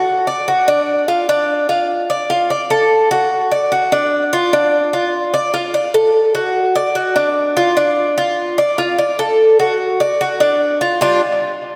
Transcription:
0.00 0.26 F#4 medium
0.27 0.47 D5 medium
0.48 0.67 F#4 medium
0.68 1.07 D4 loud
1.08 1.28 F4 medium
1.29 1.68 D4 loud
1.69 2.08 F4 medium
2.10 2.29 D5 medium
2.30 2.50 F4 medium
2.50 2.70 D5 medium
2.70 3.10 A4 medium
3.11 3.50 F#4 medium
3.52 3.71 D5 medium
3.72 3.91 F#4 medium
3.92 4.31 D4 medium
4.33 4.52 F4 medium
4.53 4.92 D4 medium
4.93 5.33 F4 medium
5.34 5.53 D5 medium
5.54 5.73 F4 medium
5.74 5.94 D5 medium
5.94 6.34 A4 medium
6.35 6.74 F#4 medium
6.75 6.95 D5 medium
6.95 7.15 F#4 medium
7.16 7.55 D4 loud
7.57 7.76 F4 loud
7.77 8.16 D4 loud
8.18 8.57 F4 medium
8.58 8.78 D5 medium
8.78 8.98 F4 medium
8.98 9.18 D5 medium
9.19 9.58 A4 medium
9.59 9.99 F#4 medium
10.00 10.20 D5 medium
10.21 10.40 F#4 medium
10.40 10.80 D4 medium
10.81 11.01 F4 medium
11.01 11.20 G3 loud
11.01 11.20 D4 medium
11.01 11.20 F4 loud

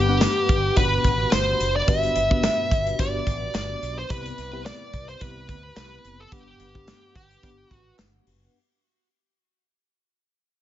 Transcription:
0.00 0.24 G1 loud
0.00 0.45 G2 medium
0.00 0.08 B3 medium
0.00 0.08 D4 medium
0.00 0.09 G4 medium
0.00 0.80 G4 loud
0.00 0.09 B4 medium
0.00 0.09 F#5 medium
0.08 0.70 B3 medium
0.08 0.70 D4 medium
0.08 0.70 G4 medium
0.08 0.70 B4 medium
0.08 0.70 F#5 medium
0.21 snare loud
0.21 clap medium
0.21 closed hi-hat loud
0.21 tambourine medium
0.49 0.69 G1 loud
0.49 kick loud
0.49 closed hi-hat medium
0.76 0.97 G1 loud
0.76 1.77 B2 medium
0.76 1.77 D4 medium
0.76 1.77 F#4 medium
0.76 1.77 G4 medium
0.76 1.33 B4 loud
0.76 1.77 B5 medium
0.76 kick medium
0.76 closed hi-hat medium
1.04 1.25 A1 loud
1.04 kick medium
1.04 closed hi-hat medium
1.32 1.52 G1 loud
1.32 1.76 C5 loud
1.32 snare loud
1.32 clap medium
1.32 closed hi-hat medium
1.32 tambourine medium
1.60 1.80 F#1 medium
1.60 closed hi-hat medium
1.76 1.89 D5 loud
1.87 2.08 G1 loud
1.87 2.67 G2 medium
1.87 2.26 B3 medium
1.87 2.26 D4 medium
1.87 2.26 F#4 medium
1.87 2.26 G4 medium
1.87 2.26 B4 medium
1.87 3.03 E5 loud
1.87 kick loud
1.87 closed hi-hat loud
2.03 closed hi-hat soft
2.16 2.47 G1 loud
2.16 closed hi-hat medium
2.30 2.92 B3 medium
2.30 2.92 D4 medium
2.30 2.92 F#4 medium
2.30 2.92 G4 medium
2.30 2.93 B4 medium
2.30 kick loud
2.43 snare loud
2.43 clap medium
2.43 closed hi-hat loud
2.43 tambourine medium
2.71 2.91 G1 loud
2.71 kick loud
2.71 closed hi-hat medium
2.87 closed hi-hat soft
2.98 3.19 G1 loud
2.98 3.99 B3 medium
2.98 3.99 D4 medium
2.98 3.99 F#4 medium
2.98 3.99 G4 medium
2.98 4.00 B4 medium
2.98 3.54 D5 loud
2.98 kick medium
2.98 closed hi-hat loud
3.27 3.47 A1 loud
3.27 kick medium
3.27 closed hi-hat medium
3.54 3.75 G1 loud
3.54 3.98 D5 loud
3.54 snare loud
3.54 clap medium
3.54 closed hi-hat medium
3.54 tambourine medium
3.82 4.02 B1 medium
3.82 closed hi-hat medium
3.99 4.10 C5 medium
4.09 4.30 C2 loud
4.09 4.89 C3 medium
4.09 4.48 B3 medium
4.09 4.48 C4 medium
4.09 4.48 E4 medium
4.09 4.48 G4 medium
4.09 4.48 B4 medium
4.09 4.66 B4 loud
4.09 kick loud
4.09 closed hi-hat loud
4.26 closed hi-hat soft
4.38 4.69 C2 loud
4.38 closed hi-hat medium
4.52 5.14 B3 medium
4.52 5.14 C4 medium
4.52 5.14 E4 medium
4.52 5.15 G4 medium
4.52 5.15 B4 medium
4.66 5.09 D5 loud
4.66 snare loud
4.66 clap medium
4.66 closed hi-hat loud
4.66 tambourine medium
4.93 5.14 C2 loud
4.93 kick medium
4.93 closed hi-hat medium
5.09 5.21 C5 loud
5.09 closed hi-hat soft
5.20 5.49 C2 loud
5.20 6.21 B3 medium
5.20 6.21 C4 medium
5.20 6.21 E4 medium
5.20 6.22 G4 medium
5.20 5.76 B4 loud
5.20 6.22 B4 medium
5.20 kick loud
5.20 closed hi-hat medium
5.49 5.69 D2 medium
5.49 kick medium
5.49 closed hi-hat medium
5.77 5.97 C2 loud
5.77 6.21 B4 loud
5.77 snare loud
5.77 clap medium
5.77 closed hi-hat medium
5.77 tambourine medium
6.04 6.24 F#1 medium
6.04 closed hi-hat medium
6.20 6.33 A4 medium
6.31 6.52 G1 loud
6.31 7.11 G2 medium
6.31 6.70 B3 medium
6.31 6.70 D4 medium
6.31 6.70 G4 medium
6.31 7.15 G4 medium
6.31 6.71 B4 medium
6.31 6.70 F#5 medium
6.31 kick loud
6.31 closed hi-hat loud
6.60 6.91 G1 loud
6.60 closed hi-hat medium
6.74 7.36 B3 medium
6.74 7.36 D4 medium
6.74 7.37 G4 medium
6.74 7.37 B4 medium
6.74 7.36 F#5 medium
6.74 kick medium
6.88 snare loud
6.88 clap medium
6.88 closed hi-hat loud
6.88 tambourine medium
7.15 7.36 G1 loud
7.15 7.70 G4 medium
7.15 kick loud
7.15 closed hi-hat medium
7.31 closed hi-hat soft
7.43 7.63 G1 loud
7.43 8.43 B3 medium
7.43 8.44 D4 medium
7.43 8.44 G4 medium
7.43 8.44 B4 medium
7.43 8.44 F#5 medium
7.43 kick loud
7.43 closed hi-hat medium
7.70 7.91 A1 loud
7.70 7.95 F#4 medium
7.70 kick medium
7.70 closed hi-hat medium
7.98 8.19 G1 loud
7.98 snare loud
7.98 clap medium
7.98 closed hi-hat medium
7.98 tambourine medium
8.27 8.47 F#1 medium
8.27 open hi-hat medium

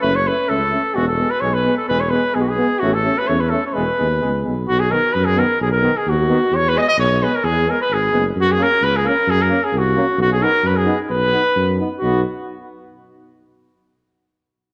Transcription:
0.00 0.28 F#1 loud
0.00 0.10 A3 medium
0.00 0.13 C#4 medium
0.00 0.17 B4 loud
0.16 0.29 C#5 medium
0.26 0.35 A3 medium
0.26 0.36 C#4 medium
0.26 0.51 B4 medium
0.48 0.75 C#2 medium
0.48 0.58 A3 medium
0.48 0.58 C#4 medium
0.48 0.96 A4 medium
0.71 0.81 A3 medium
0.71 0.82 C#4 medium
0.94 1.22 E1 loud
0.94 1.04 G#3 medium
0.94 1.06 B3 medium
0.94 1.07 F#4 loud
1.08 1.32 A4 medium
1.18 1.28 G#3 medium
1.18 1.28 B3 medium
1.31 1.42 B4 medium
1.41 1.68 B1 medium
1.41 1.52 G#3 medium
1.41 1.51 B3 medium
1.41 1.55 C#5 medium
1.54 1.77 B4 loud
1.65 1.75 G#3 medium
1.65 1.75 B3 medium
1.77 1.88 A4 medium
1.88 2.15 E1 loud
1.88 1.98 G#3 medium
1.88 1.97 B3 medium
1.88 2.02 B4 medium
2.00 2.11 C#5 medium
2.10 2.22 G#3 medium
2.10 2.20 B3 medium
2.10 2.36 B4 loud
2.34 2.61 B1 medium
2.34 2.44 G#3 medium
2.34 2.44 B3 medium
2.34 2.43 G#4 medium
2.42 2.50 F#4 medium
2.49 2.81 G#4 medium
2.57 2.69 G#3 medium
2.57 2.67 B3 medium
2.79 3.08 A1 loud
2.79 2.91 A3 medium
2.79 2.92 C#4 medium
2.79 2.95 F#4 medium
2.94 3.20 A4 medium
3.04 3.13 A3 medium
3.04 3.14 C#4 medium
3.18 3.29 B4 medium
3.26 3.54 E2 loud
3.26 3.36 A3 medium
3.26 3.39 C#4 medium
3.26 3.42 C#5 medium
3.40 3.51 B4 medium
3.49 3.59 A3 medium
3.49 3.61 C#4 medium
3.49 3.63 A4 medium
3.67 3.75 C#5 medium
3.73 3.89 E1 loud
3.73 3.83 G#3 medium
3.73 3.85 B3 medium
3.73 4.44 B4 medium
3.97 4.20 D#2 medium
3.97 4.06 G#3 medium
3.97 4.08 B3 medium
4.21 4.43 C#2 medium
4.21 4.30 G#3 medium
4.21 4.31 B3 medium
4.43 4.67 B1 medium
4.43 4.53 G#3 soft
4.43 4.54 B3 medium
4.67 4.94 B1 medium
4.67 4.81 F#4 loud
4.80 4.93 G#4 medium
4.90 4.99 D#3 medium
4.90 5.00 B3 medium
4.90 5.15 A#4 loud
5.13 5.41 F#2 loud
5.13 5.27 B4 medium
5.25 5.40 G#4 loud
5.36 5.45 D#3 medium
5.36 5.45 B3 medium
5.36 5.61 A#4 medium
5.61 5.86 B1 loud
5.61 5.71 G#4 medium
5.72 5.99 A#4 medium
5.81 5.92 D#3 medium
5.81 5.90 B3 medium
5.97 6.11 G#4 medium
6.07 6.32 D#2 loud
6.07 6.57 F#4 medium
6.29 6.38 D#3 medium
6.29 6.38 B3 medium
6.52 6.77 E2 medium
6.52 6.70 C#5 loud
6.69 6.79 B4 loud
6.75 6.84 G#3 medium
6.75 6.86 B3 medium
6.75 6.81 D#5 loud
6.82 6.88 D#5 loud
6.89 6.98 D#5 loud
6.98 7.24 B1 loud
6.98 7.25 C#5 loud
7.21 7.30 G#3 medium
7.21 7.30 B3 medium
7.21 7.37 B4 loud
7.35 7.46 A#4 medium
7.43 7.69 E2 loud
7.43 7.72 G#4 loud
7.66 7.76 G#3 medium
7.66 7.75 B3 medium
7.70 7.81 A#4 medium
7.82 7.95 B4 loud
7.90 8.11 G#1 medium
7.90 8.27 G#4 loud
8.12 8.34 F#1 medium
8.12 8.22 G#3 medium
8.12 8.21 B3 medium
8.36 8.61 F#2 loud
8.41 8.53 F#4 loud
8.52 8.64 G#4 loud
8.57 8.67 A#3 medium
8.57 8.68 C#4 medium
8.63 8.85 A#4 loud
8.81 9.07 C#2 medium
8.81 8.98 B4 loud
8.96 9.08 G#4 loud
9.03 9.12 A#3 medium
9.03 9.15 C#4 medium
9.07 9.32 A#4 loud
9.27 9.53 F#2 loud
9.27 9.43 G#4 loud
9.42 9.66 A#4 medium
9.49 9.59 A#3 medium
9.49 9.60 C#4 medium
9.64 9.80 G#4 medium
9.72 9.98 C2 loud
9.78 10.20 F#4 medium
9.95 10.05 A#3 medium
9.95 10.05 C#4 medium
10.18 10.44 B1 loud
10.18 10.31 F#4 loud
10.32 10.44 G#4 medium
10.41 10.51 B3 medium
10.41 10.50 D#4 medium
10.41 10.68 A#4 loud
10.64 10.89 F#2 loud
10.64 10.78 B4 medium
10.77 11.00 G#4 medium
10.86 10.95 B3 medium
10.86 10.95 D#4 medium
11.10 11.35 B1 medium
11.10 11.75 B4 loud
11.31 11.41 B3 medium
11.31 11.42 D#4 medium
11.56 11.81 F#2 loud
11.79 11.88 B3 medium
11.79 11.88 D#4 medium
11.99 12.23 B1 loud
11.99 12.22 D#4 medium
11.99 12.21 F#4 medium
12.03 12.23 B3 medium

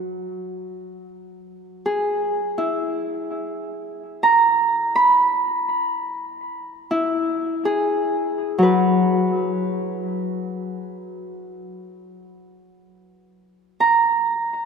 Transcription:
0.00 2.00 F#3 soft
1.86 4.13 G#4 soft
2.58 5.70 E4 soft
4.23 5.63 A#5 medium
4.96 8.08 B5 medium
6.91 9.52 E4 soft
7.65 9.93 G#4 soft
8.58 10.83 F#3 soft
8.63 10.99 B4 soft
13.80 14.65 A#5 medium

